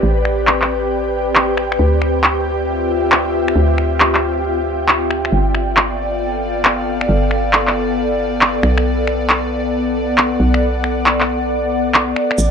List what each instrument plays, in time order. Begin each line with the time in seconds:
Already playing: ambient pad C4 B4 D5 G5, analog synth pad G4
0.03 fm bass A1
0.25 finger snap
0.47 clap
0.62 clap
1.35 clap
1.57 finger snap
1.72 finger snap
1.79 fm bass D2
2.02 ambient pad F4, finger snap
2.16 ambient pad E5
2.24 clap
3.12 clap
3.48 finger snap
3.56 fm bass D2
3.78 finger snap
4.00 clap
4.15 clap
4.88 clap
5.11 finger snap
5.25 finger snap
5.32 fm bass G1, ambient pad B3, analog synth pad D5
5.55 ambient pad A4, finger snap
5.61 ambient pad F5
5.77 clap
6.65 clap
7.01 finger snap
7.09 fm bass G1
7.31 finger snap
7.53 clap
7.67 clap
8.41 clap
8.63 fm bass B1, finger snap
8.78 finger snap
8.91 ambient pad D5
9.07 finger snap
9.29 clap
9.41 ambient pad F#5
10.18 clap
10.40 fm bass B1
10.54 finger snap
10.84 finger snap
11.06 clap
11.20 clap
11.94 clap
12.16 finger snap
12.31 finger snap
12.38 fm bass A1, ambient pad C4, analog synth pad G5, shaker